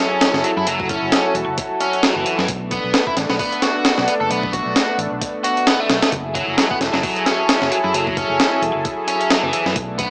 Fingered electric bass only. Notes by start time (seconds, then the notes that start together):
0.34 F#1
0.57 F#2
0.67 F#1
1.02 F#1
1.35 E1
1.48 F#1
2.16 F#1
2.39 F#2
2.48 B1
2.84 B1
3.17 A1
3.30 B1
3.98 B1
4.21 F#1
4.30 B1
4.66 B1
4.98 A1
5.12 B1
5.90 B1
6.12 F#1
6.48 F#1
6.81 E1
6.93 F#1
7.62 F#1
7.84 F#2
7.94 F#1
8.30 F#1
8.62 E1
8.75 F#1
9.43 F#1
9.66 F#2
9.76 B1